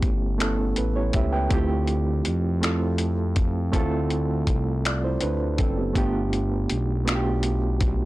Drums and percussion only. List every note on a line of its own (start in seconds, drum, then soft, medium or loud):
0.02 kick medium
0.02 closed hi-hat soft
0.40 finger snap loud
0.40 closed hi-hat medium
0.76 closed hi-hat soft
1.13 kick medium
1.13 closed hi-hat soft
1.51 kick medium
1.51 closed hi-hat medium
1.88 closed hi-hat soft
2.25 closed hi-hat soft
2.63 finger snap loud
2.63 closed hi-hat medium
2.98 closed hi-hat soft
3.36 kick medium
3.36 closed hi-hat soft
3.73 kick medium
3.73 closed hi-hat medium
4.10 closed hi-hat soft
4.47 kick medium
4.47 closed hi-hat soft
4.85 finger snap loud
4.85 closed hi-hat medium
5.21 closed hi-hat soft
5.58 kick medium
5.58 closed hi-hat soft
5.95 kick medium
5.95 closed hi-hat medium
6.33 closed hi-hat soft
6.70 closed hi-hat soft
7.08 finger snap loud
7.08 closed hi-hat medium
7.43 closed hi-hat soft
7.81 kick medium
7.81 closed hi-hat soft